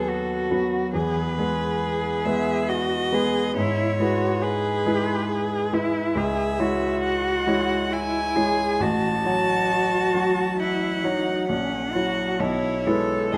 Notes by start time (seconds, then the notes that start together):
Already playing: D#2 F#3 B3 A4 B4
0.08 F#4
0.51 F#3 B3 B4
0.93 E2 G#4 B4
1.38 G#3 B3 G#4 B4
2.25 G#3 B3 B4 E5
2.68 F#4 D#5
3.12 G#3 B3 G#4 B4
3.56 G#2 E4 C#5
4.00 G#3 E4 F#4 B4
4.42 G#4 B4
4.86 G#3 E4 B4
5.29 G#4
5.73 G#3 E4 B4
6.15 C#2 G#4 E5
6.59 G#3 E4 F#4 C#5
7.04 F#5
7.47 G#3 E4 C#5
7.92 E4 G#5
8.36 G#3 E4 G#4 C#5
8.80 A1 F#4 A5
9.24 F#3 F#4 C#5
10.14 F#3 F#4 C#5
10.60 E4 F#5
11.04 F#3 D#4 F#4 C#5
11.48 A#1 C#4 F#5
11.94 F#3 E4 F#4 C#5
12.40 B1 E4 C#5
12.87 G#3 E4 A4 B4
13.32 B1 G#4 D#5